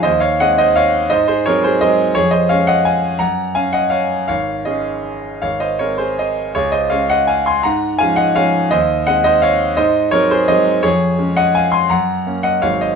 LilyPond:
<<
  \new Staff \with { instrumentName = "Grand piano" } { \time 3/4 \key des \major \tempo 4 = 168 <c'' ees''>8 <des'' f''>8 <ees'' ges''>8 <c'' ees''>8 <des'' f''>4 | <c'' ees''>8 <aes' c''>8 <bes' des''>8 <aes' c''>8 <c'' ees''>4 | <aes' des''>8 <c'' ees''>8 <des'' f''>8 <ees'' ges''>8 <f'' aes''>4 | <ges'' bes''>4 <f'' aes''>8 <ees'' ges''>8 <des'' f''>4 |
<des'' f''>4 <aes' ees''>2 | <des'' f''>8 <c'' ees''>8 <bes' des''>8 <aes' c''>8 <c'' ees''>4 | <aes' des''>8 <c'' ees''>8 <des'' f''>8 <ees'' ges''>8 <f'' aes''>8 <aes'' c'''>8 | <ges'' bes''>4 <f'' aes''>8 <ees'' ges''>8 <des'' f''>4 |
<c'' ees''>4 <ees'' ges''>8 <c'' ees''>8 <des'' f''>4 | <c'' ees''>4 <bes' des''>8 <aes' c''>8 <c'' ees''>4 | <aes' des''>4. <ees'' ges''>8 <f'' aes''>8 <aes'' c'''>8 | <ges'' bes''>4. <ees'' ges''>8 <des'' f''>8 <c'' ees''>8 | }
  \new Staff \with { instrumentName = "Grand piano" } { \clef bass \time 3/4 \key des \major ees,4 <aes c'>2 | aes,4 <ges aes c'>4 <ges aes c'>4 | f,4 <aes des'>2 | ges,4 des'2 |
aes,,4 <aes des'>2 | aes,,4 <aes c'>2 | des,4 <aes des'>2 | aes,4 <f aes des'>4 <f aes des'>4 |
ees,4 <aes c'>2 | aes,4 <ges aes c'>4 <ges aes c'>4 | f,4 <aes des'>2 | ges,4 <bes des'>4 <aes,, ges aes c'>4 | }
>>